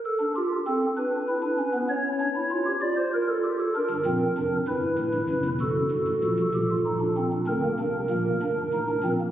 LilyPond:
<<
  \new Staff \with { instrumentName = "Pipe organ" } { \time 6/8 \key g \minor \tempo 4. = 65 << { a'8 g'8 a'8 b'4. | cis''4. d''16 c''16 bes'16 a'16 g'16 a'16 | bes'4. b'4. | a'2. |
bes'2. | } \\ { r16 d'16 f'8 c'8 d'8 e'16 d'16 cis'16 b16 | cis'8 d'16 e'16 f'16 g'16 f'4. | d'8 c'8 d'8 e'4. | fis'4. g'16 f'16 ees'16 d'16 c'16 d'16 |
c'16 bes16 d'8 bes8 d'8 ees'16 d'16 c'16 bes16 | } >> }
  \new Staff \with { instrumentName = "Pipe organ" } { \clef bass \time 6/8 \key g \minor r2. | r2. | r16 <g,, g,>16 <bes,, bes,>8 <f,, f,>8 <g,, g,>8 <a,, a,>16 <g,, g,>16 <fis,, fis,>16 <e,, e,>16 | <fis,, fis,>8 <g,, g,>16 <a,, a,>16 <bes,, bes,>16 <c, c>16 <bes,, bes,>4. |
<d, d>8 <c, c>8 <bes,, bes,>8 <g,, g,>8 <a,, a,>8 <bes,, bes,>8 | }
>>